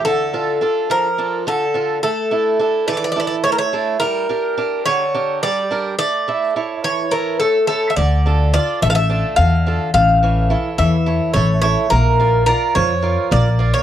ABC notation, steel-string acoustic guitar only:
X:1
M:7/8
L:1/8
Q:1/4=106
K:Dm
V:1 name="Steel-string acoustic guitar"
D, [DFA] [DFA] F, [DFA] D, [DFA] | A, [DEA] [DEA] E, [DEA] A, [DEA] | G, [DGB] [DGB] D, [DGB] G, [DGB] | A, [EAe] [EA^c] E, [EAc] A, [EAc] |
D, [DFA] [DFA] A, [DFA] D, [DFA] | A, [E,A^c] [EAc] E, [EAc] A, [EAc] | B, [FBd] [FBd] F, [FBd] B, [FBd] |]